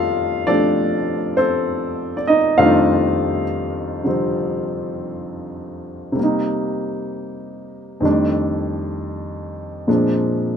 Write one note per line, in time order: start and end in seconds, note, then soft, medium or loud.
0.00 2.57 F2 soft
0.00 2.57 C3 soft
0.00 2.57 D#3 soft
0.00 2.58 G3 soft
0.00 0.47 A3 soft
0.00 0.48 D4 medium
0.00 2.29 D#4 medium
0.00 2.59 F4 medium
0.00 0.49 G4 medium
0.00 0.48 A4 medium
0.00 6.20 C#5 medium
0.00 0.47 D5 medium
0.00 2.27 D#5 medium
0.00 0.50 F5 loud
0.47 2.58 F3 soft
0.47 2.58 A3 soft
0.47 1.37 C4 soft
0.47 1.33 D4 medium
0.47 2.59 G4 soft
0.47 1.34 A4 medium
0.47 1.40 D5 medium
1.37 2.15 C4 medium
1.37 2.15 A4 medium
1.37 2.21 C5 medium
2.17 2.27 D5 medium
2.27 2.35 D#4 medium
2.27 2.34 D#5 medium
2.58 6.18 F2 medium
2.58 4.02 C3 soft
2.58 6.18 D#3 medium
2.58 4.05 G3 medium
2.58 6.18 A3 medium
2.58 6.19 D4 medium
2.58 3.43 F4 medium
2.58 3.43 A4 medium
2.58 3.43 C5 medium
2.58 3.42 F5 medium
4.04 6.11 C3 soft
4.04 6.17 D3 soft
4.04 6.17 F3 soft
4.04 6.14 G3 soft
4.04 6.18 C4 medium
6.12 8.00 C3 medium
6.12 8.02 G3 soft
6.19 8.03 A#3 soft
6.23 8.05 D#4 medium
8.00 9.87 F2 medium
8.00 9.88 D#3 soft
8.00 9.89 G3 soft
8.04 9.89 A3 soft
8.04 9.88 D4 medium
9.87 10.57 A#2 soft
9.87 10.57 F3 soft
9.87 10.57 G#3 soft
9.87 10.57 A#3 soft
9.87 10.57 C4 soft
9.87 10.57 D4 soft